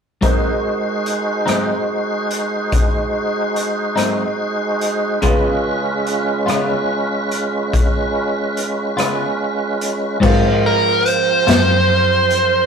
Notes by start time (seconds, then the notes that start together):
0.21 G#2 F#3 G#3 C4 D#4 F#4 A#4 C5 D#5, kick, closed hi-hat
1.06 closed hi-hat
1.46 G#2 F#3 C4 D#4, cross-stick, closed hi-hat
2.31 closed hi-hat
2.72 kick, closed hi-hat
3.56 closed hi-hat
3.96 G#2 F#3 C4 D#4, cross-stick, closed hi-hat
4.81 closed hi-hat
5.21 C#3 G#3 B3 C#4 F4 G#4 B4 D#5, kick, closed hi-hat
6.07 closed hi-hat
6.46 C#3 G#3 B3 F4, cross-stick, closed hi-hat
7.31 closed hi-hat
7.73 kick, closed hi-hat
8.57 closed hi-hat
8.97 C#3 G#3 B3 F4, cross-stick, closed hi-hat
9.81 closed hi-hat
10.20 G#2 F3 F#3 C4 F4 G#4 A#4, kick, crash
10.25 C5
10.66 A#4
11.06 C5, closed hi-hat
11.47 F#2 G#2 F#3 C4 F4, snare, closed hi-hat
12.30 closed hi-hat